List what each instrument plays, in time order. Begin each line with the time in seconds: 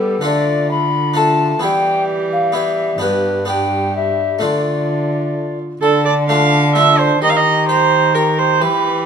Already playing: harpsichord G3 B3 D4 G4, cello G3, bassoon B3, viola G4, recorder A4
0.21 cello D3, harpsichord D3 D4 F4 A4
0.25 bassoon A3, viola F4, recorder D5
0.71 recorder B5
1.14 harpsichord D4 F4 A4, recorder A5
1.18 bassoon A3, viola F4
1.60 cello E3, harpsichord E3 B3 E4 G4, recorder G5
1.64 bassoon G3, viola G4
2.33 recorder F5
2.52 bassoon G3, harpsichord B3 E4 G4, recorder E5
2.57 viola G4
2.98 cello G2, harpsichord G2 B3 D4 G4, viola G4, recorder B4
3.02 bassoon G3
3.45 bassoon G3, harpsichord B3 D4 G4, viola G4, recorder G5
3.96 recorder E5
4.39 cello D3, harpsichord D3 A3 D4 F4, bassoon A3, viola F4, recorder D5
5.81 cello D3, harpsichord D3, bassoon D4, viola A4, recorder A5
6.05 viola D5
6.28 harpsichord A3 D4 F4, bassoon D4, viola F5, recorder A5
6.75 harpsichord A3 D4 F4, viola E5
6.99 viola C5
7.22 cello D#3, harpsichord D#3, bassoon G4, viola D#5, recorder A#5
7.30 viola F5
7.36 viola D#5
7.68 harpsichord G4, viola C5
8.14 bassoon G4, harpsichord G4, viola A#4, recorder A#5
8.39 viola C5
8.61 cello E3, harpsichord E3, bassoon G4, viola B4, recorder B5